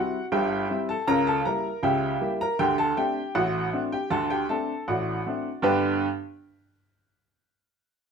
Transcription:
0.00 0.15 G3 medium
0.00 0.16 C4 medium
0.00 0.16 E4 medium
0.00 0.30 F#4 medium
0.00 0.25 F#5 medium
0.32 0.64 G1 medium
0.32 0.64 G2 medium
0.32 0.85 G4 medium
0.32 0.85 E5 medium
0.32 0.77 G5 loud
0.70 0.91 G3 medium
0.70 0.91 C4 medium
0.70 0.91 E4 medium
0.89 1.07 A4 medium
0.89 1.08 A5 loud
1.07 1.40 C#2 loud
1.07 1.40 C#3 loud
1.07 1.26 A#4 medium
1.07 1.27 A#5 loud
1.27 1.45 A4 medium
1.27 1.46 A5 loud
1.45 1.67 G3 medium
1.45 1.66 A#3 medium
1.45 1.67 E4 medium
1.45 1.81 A#4 medium
1.45 1.81 A#5 loud
1.83 2.15 C#2 loud
1.83 2.15 C#3 medium
1.83 2.37 G4 medium
1.83 2.37 E5 medium
1.83 2.29 G5 loud
2.21 2.42 G3 medium
2.21 2.42 A#3 medium
2.21 2.42 E4 medium
2.41 2.59 A#4 medium
2.41 2.60 A#5 loud
2.59 2.91 D2 medium
2.59 2.91 D3 loud
2.59 2.77 G4 medium
2.59 2.78 G5 loud
2.78 2.96 A4 medium
2.78 2.97 A5 loud
2.97 3.18 A3 medium
2.97 3.18 C4 medium
2.97 3.19 D4 medium
2.97 3.33 G4 medium
2.97 3.33 G5 medium
3.35 3.67 A1 loud
3.35 3.67 A2 medium
3.35 3.88 F#4 medium
3.35 3.80 F#5 loud
3.73 3.94 A3 medium
3.73 3.94 C4 medium
3.73 3.94 D4 medium
3.92 4.11 G4 medium
3.92 4.11 G5 medium
4.11 4.43 D2 loud
4.11 4.43 D3 loud
4.11 4.29 A4 medium
4.11 4.30 A5 loud
4.30 4.48 G4 medium
4.30 4.49 G5 loud
4.49 4.70 A3 medium
4.49 4.71 C4 medium
4.49 4.71 D4 medium
4.49 4.85 A4 medium
4.49 4.80 A5 medium
4.88 5.20 A1 medium
4.88 5.20 A2 medium
4.88 5.61 F#4 medium
4.88 5.61 D5 medium
4.88 5.49 F#5 medium
5.26 5.47 A3 medium
5.26 5.48 C4 medium
5.26 5.48 D4 medium
5.62 6.05 G2 loud
5.62 6.06 D3 medium
5.62 6.06 B3 medium
5.62 6.06 D4 loud
5.62 6.06 G4 loud
5.62 6.06 B4 loud
5.62 6.06 G5 medium

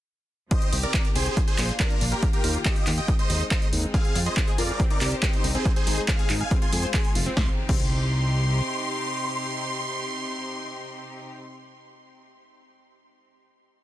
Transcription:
0.51 1.36 C3 medium
0.51 1.36 C4 medium
0.51 1.36 D#4 medium
0.51 1.36 G4 medium
0.51 0.76 C5 medium
0.51 0.76 D#5 loud
0.51 kick loud
0.51 closed hi-hat medium
0.62 closed hi-hat soft
0.73 0.86 C2 loud
0.73 open hi-hat loud
0.83 1.08 A#4 medium
0.83 1.08 D5 medium
0.83 closed hi-hat soft
0.94 kick loud
0.94 clap loud
0.94 closed hi-hat medium
1.05 closed hi-hat soft
1.16 1.29 C2 medium
1.16 1.40 G#4 medium
1.16 1.40 C5 medium
1.16 open hi-hat loud
1.26 closed hi-hat soft
1.37 3.07 A#3 medium
1.37 2.22 D4 medium
1.37 3.07 F4 medium
1.37 kick loud
1.37 closed hi-hat medium
1.47 1.73 G#4 medium
1.47 1.73 C5 loud
1.47 closed hi-hat soft
1.58 1.71 A#1 medium
1.58 clap medium
1.58 open hi-hat loud
1.69 closed hi-hat soft
1.80 2.05 D4 medium
1.80 2.05 A#4 loud
1.80 kick loud
1.80 clap loud
1.80 closed hi-hat medium
1.91 closed hi-hat soft
2.01 2.14 A#1 medium
2.01 open hi-hat loud
2.12 2.28 G4 medium
2.12 2.29 A#4 medium
2.12 closed hi-hat soft
2.23 3.07 D#3 medium
2.23 3.07 G4 medium
2.23 kick loud
2.23 closed hi-hat medium
2.33 2.58 G4 medium
2.33 2.58 A#4 loud
2.33 closed hi-hat soft
2.44 2.57 D#2 loud
2.44 open hi-hat loud
2.65 2.91 G4 medium
2.65 2.90 D#5 loud
2.65 kick loud
2.65 clap loud
2.65 closed hi-hat medium
2.76 closed hi-hat soft
2.87 3.00 D#2 medium
2.87 clap medium
2.87 open hi-hat loud
2.98 3.14 D#5 medium
2.98 3.14 G5 loud
2.98 closed hi-hat soft
3.08 4.78 G#3 medium
3.08 7.33 C4 medium
3.08 3.93 D#4 medium
3.08 kick loud
3.08 closed hi-hat medium
3.19 3.44 C5 medium
3.19 3.44 D#5 loud
3.19 closed hi-hat soft
3.30 3.43 D#2 medium
3.30 open hi-hat loud
3.41 closed hi-hat soft
3.51 3.68 C5 medium
3.51 3.68 D#5 medium
3.51 kick loud
3.51 clap loud
3.51 closed hi-hat medium
3.62 closed hi-hat soft
3.73 3.86 D#2 loud
3.73 open hi-hat loud
3.83 closed hi-hat soft
3.94 3.97 C4 medium
3.94 4.79 F4 medium
3.94 4.19 G#4 medium
3.94 4.19 F5 medium
3.94 kick loud
3.94 closed hi-hat medium
4.05 closed hi-hat soft
4.15 4.29 F2 loud
4.15 4.23 F4 medium
4.15 open hi-hat loud
4.26 4.31 G#4 medium
4.26 4.51 C5 medium
4.26 4.51 D#5 loud
4.37 4.40 C5 medium
4.37 kick loud
4.37 clap loud
4.37 closed hi-hat medium
4.48 4.55 G#4 loud
4.48 closed hi-hat soft
4.58 4.71 F2 medium
4.58 4.61 F4 medium
4.58 4.83 A#4 medium
4.58 4.83 D5 medium
4.58 open hi-hat loud
4.69 closed hi-hat soft
4.80 5.65 C3 medium
4.80 4.85 C4 medium
4.80 6.49 D#4 medium
4.80 5.65 G4 medium
4.80 kick loud
4.80 closed hi-hat medium
4.90 4.93 D#4 medium
4.90 5.15 A#4 medium
4.90 5.15 D5 loud
4.90 closed hi-hat soft
5.01 5.14 C2 medium
5.01 5.08 G4 medium
5.01 clap medium
5.01 open hi-hat loud
5.12 5.17 C5 medium
5.12 closed hi-hat soft
5.23 5.48 D#4 medium
5.23 5.27 G4 loud
5.23 5.48 C5 loud
5.23 kick loud
5.23 clap loud
5.23 closed hi-hat medium
5.33 closed hi-hat soft
5.44 5.57 C2 loud
5.44 5.47 D#4 medium
5.44 open hi-hat loud
5.55 5.62 C4 loud
5.55 5.71 G#4 medium
5.55 5.71 C5 medium
5.55 closed hi-hat soft
5.65 7.35 G#3 medium
5.65 5.68 C4 medium
5.65 kick loud
5.65 closed hi-hat medium
5.76 6.01 G#4 medium
5.76 6.01 C5 loud
5.76 closed hi-hat soft
5.87 6.00 G#1 loud
5.87 5.94 D#4 medium
5.87 open hi-hat loud
5.98 6.02 G#4 medium
5.98 closed hi-hat soft
6.08 6.33 G#4 medium
6.08 6.11 C5 medium
6.08 6.33 F5 loud
6.08 kick loud
6.08 clap loud
6.08 closed hi-hat medium
6.19 6.26 G#4 loud
6.19 closed hi-hat soft
6.30 6.43 G#1 medium
6.30 6.33 D#4 medium
6.30 clap medium
6.30 open hi-hat loud
6.40 6.57 F5 medium
6.40 6.57 G#5 loud
6.40 closed hi-hat soft
6.51 6.56 C4 medium
6.51 7.36 F4 medium
6.51 kick loud
6.51 closed hi-hat medium
6.62 6.65 F4 medium
6.62 6.87 G#5 medium
6.62 6.87 C6 loud
6.62 closed hi-hat soft
6.73 6.86 F2 medium
6.73 6.80 G#4 medium
6.73 open hi-hat loud
6.83 6.88 C5 medium
6.83 closed hi-hat soft
6.94 6.99 G#4 loud
6.94 7.11 G#5 medium
6.94 7.11 C6 loud
6.94 kick loud
6.94 clap loud
6.94 closed hi-hat medium
7.05 closed hi-hat soft
7.15 7.29 F1 loud
7.15 7.18 F4 medium
7.15 open hi-hat loud
7.26 7.33 C4 loud
7.37 7.49 C2 loud
7.37 11.35 C3 medium
7.37 11.35 C4 medium
7.37 7.49 C4 medium
7.37 11.35 D#4 medium
7.37 11.35 G4 medium
7.37 7.49 C6 medium
7.37 kick loud
7.37 snare medium
7.69 8.61 C2 loud
7.69 7.81 C4 loud
7.69 11.56 C6 loud
7.69 kick loud
7.69 crash medium

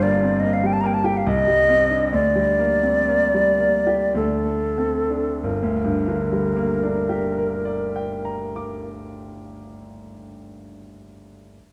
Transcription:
0.00 1.20 G1 medium
0.00 1.20 G2 medium
0.00 0.14 G3 medium
0.00 0.34 A#3 medium
0.00 0.41 D5 loud
0.23 0.42 C4 medium
0.40 0.75 A#3 medium
0.40 0.55 D#5 loud
0.53 0.68 F5 medium
0.63 0.96 G3 medium
0.63 0.74 G5 medium
0.73 0.82 A5 loud
0.81 1.16 A#3 medium
0.81 0.88 A#5 loud
0.86 0.95 G5 medium
0.94 1.07 A5 medium
1.04 1.25 G4 medium
1.04 1.19 G5 medium
1.17 1.28 F5 medium
1.26 2.10 C2 medium
1.26 2.13 D#5 loud
1.47 1.81 G3 medium
1.69 2.03 C4 medium
1.90 2.12 D4 medium
2.13 4.13 D2 medium
2.13 4.13 D5 loud
2.36 2.73 G3 medium
2.59 2.98 A#3 medium
2.83 3.08 C4 soft
3.08 3.49 A#3 medium
3.34 3.77 G3 medium
3.60 4.04 A#3 medium
3.87 4.16 G4 medium
4.15 5.39 D2 medium
4.15 5.41 A4 medium
4.45 4.98 A3 soft
4.78 5.31 C4 medium
5.10 5.43 D4 soft
5.43 8.89 G1 medium
5.43 8.89 A#4 medium
5.63 9.08 D2 medium
5.84 9.30 G2 medium
6.08 9.54 D3 medium
6.32 9.78 G3 medium
6.56 10.02 A#3 medium
6.83 10.29 D4 medium
7.09 10.55 G4 medium
7.38 10.78 A#4 medium
7.65 10.77 D5 medium
7.96 10.78 G5 medium
8.25 10.78 A#5 soft
8.56 10.79 D6 soft

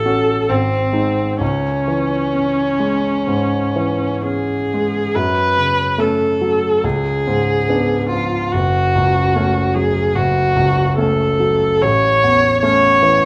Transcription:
0.00 0.46 A1 soft
0.00 0.51 A4 medium
0.06 0.45 C#4 soft
0.06 0.45 F#4 soft
0.49 1.38 G#1 soft
0.49 1.41 C4 medium
0.93 1.36 G#3 soft
0.93 1.36 D#4 soft
1.41 3.22 C#2 soft
1.41 4.22 C#4 medium
1.88 2.62 E3 soft
2.35 3.08 C#4 soft
2.80 3.55 G#3 soft
3.27 4.06 G#2 soft
3.76 4.54 E3 soft
4.25 4.99 C#4 soft
4.25 5.16 G#4 medium
4.74 5.17 G#3 soft
5.15 6.80 F#2 soft
5.15 6.01 B4 medium
5.57 6.24 C#3 soft
5.98 6.37 A3 soft
5.98 6.37 C#4 soft
5.98 6.86 A4 medium
6.41 6.84 F#3 soft
6.84 8.49 C#2 soft
6.84 8.09 G#4 medium
7.27 7.94 G#2 soft
7.69 8.07 B3 soft
7.69 8.07 D4 soft
8.09 8.53 F3 soft
8.09 8.53 F4 medium
8.52 10.12 F#1 soft
8.52 9.76 F#4 medium
8.95 9.60 C#2 soft
9.36 9.71 A3 soft
9.36 9.71 C#4 soft
9.74 10.40 F#3 soft
9.74 10.17 G#4 medium
10.15 11.78 F#1 soft
10.15 10.98 F#4 medium
10.56 11.24 C#2 soft
10.98 11.36 A3 soft
10.98 11.36 C#4 soft
10.98 11.83 A4 medium
11.40 11.82 F#3 soft
11.82 13.25 A1 soft
11.82 12.62 C#5 medium
12.24 12.87 E2 soft
12.62 12.99 A3 soft
12.62 12.99 C#4 soft
12.62 13.25 C#5 medium
13.02 13.25 E3 soft

